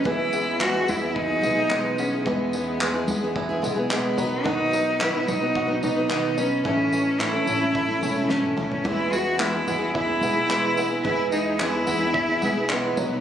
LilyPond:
<<
  \new Staff \with { instrumentName = "Upright piano" } { \time 4/4 \key e \major \tempo 4 = 109 <e gis b b'>1 | <gis b e' b'>2~ <gis b e' b'>8 <gis b e' gis'>4 <b dis' fis' dis''>8~ | <b dis' fis' dis''>2.~ <b dis' fis' dis''>8 r8 | <cis' e' a' e''>2.~ <cis' e' a' e''>8 <cis' e' a' e''>8 |
<b e' gis' e''>1 | <b e' gis' e''>2. <b e' gis' fis''>8 <b dis' fis' dis''>8 | }
  \new Staff \with { instrumentName = "Cello" } { \time 4/4 \key e \major e'4 fis'8 e'8 dis'4. cis'8 | b2 r4 b4 | dis'4 e'8 dis'4 dis'4 cis'8 | cis'4 e'2 cis'8 cis'8 |
e'8 fis'8 e'4 e'2 | e'8 dis'8 e'2 b4 | }
  \new Staff \with { instrumentName = "Steel-string acoustic guitar" } { \time 4/4 \key e \major <e gis b e' gis'>8 <gis b e' gis'>8 <e gis b e' gis'>16 <b e' gis'>16 <gis b e' gis'>16 <b e' gis'>8 <b e' gis'>16 <gis b e' gis'>16 <b e' gis'>16 <e gis b e' gis'>8 <gis b e' gis'>16 <b e' gis'>16 | <e gis b e' gis'>8 <gis b e' gis'>8 <e gis b e' gis'>16 <b e' gis'>16 <gis b e' gis'>16 <b e' gis'>8 <b e' gis'>16 <gis b e' gis'>16 <b e' gis'>16 <e gis b e' gis'>8 <fis b dis' b'>8 | <b, dis fis b dis' b'>8 <fis b dis' b'>8 <b, dis fis b dis' b'>16 <fis b dis' b'>16 <fis b dis' b'>16 <fis b dis' b'>8 <fis b dis' b'>16 <fis b dis' b'>16 <fis b dis' b'>16 <b, dis fis b dis' b'>8 <fis b dis' b'>8 | <a, e a cis' e' a'>8 <a cis' e' a'>8 <a, e a cis' e' a'>16 <a cis' e' a'>16 <a cis' e' a'>16 <a cis' e' a'>8 <a cis' e' a'>16 <a cis' e' a'>16 <a cis' e' a'>16 <a, e a cis' e' a'>8 <a cis' e' a'>8 |
<e gis b e' gis'>8 <gis b e' gis'>8 <e gis b e' gis'>16 <b e' gis'>16 <gis b e' gis'>16 <b e' gis'>8 <b e' gis'>16 <gis b e' gis'>16 <b e' gis'>16 <e gis b e' gis'>8 <gis b e' gis'>16 <b e' gis'>16 | <e gis b e' gis'>8 <gis b e' gis'>8 <e gis b e' gis'>16 <b e' gis'>16 <gis b e' gis'>16 <b e' gis'>8 <b e' gis'>16 <gis b e' gis'>16 <b e' gis'>16 <e gis b e' gis'>8 <fis b dis' b'>16 <fis b dis' b'>16 | }
  \new Staff \with { instrumentName = "Five-string banjo" } { \time 4/4 \key e \major <e e'>8 b8 gis8 b4 b8 gis8 b8 | <e e'>8 b8 gis8 b8 e'8 b8 gis8 dis8 | <dis fis'>8 dis'8 b8 dis'8 fis'8 dis'8 b8 dis'8 | <e e'>8 cis'8 a8 cis'8 e'8 cis'8 a8 cis'8 |
<e e'>8 b8 gis8 b8 e'8 b8 gis8 b8 | <e e'>8 b8 gis8 b8 e'8 b8 gis8 fis8 | }
  \new Staff \with { instrumentName = "Upright bass" } { \clef bass \time 4/4 \key e \major e,4. e,4 b,,4. | e,4. e,4 b,,4 b,,8~ | b,,4. b,,4 b,,4. | a,,4. a,,4 e,,4. |
e,4. e,4 b,,4. | e,4. e,4 b,,4 b,,8 | }
  \new DrumStaff \with { instrumentName = "Drums" } \drummode { \time 4/4 bd8 tamb8 hc8 tamb8 bd8 tamb8 hc8 tamb8 | bd8 tamb8 hc8 tamb8 bd8 tamb8 hc8 tamb8 | bd8 tamb8 hc8 tamb8 bd8 tamb8 hc8 tamb8 | bd8 tamb8 hc8 tamb8 bd8 tamb8 sn16 tommh16 toml16 tomfh16 |
bd8 tamb8 hc8 tamb8 bd8 tamb8 hc8 tamb8 | bd8 tamb8 hc8 tamb8 bd8 tamb8 hc8 tamb8 | }
>>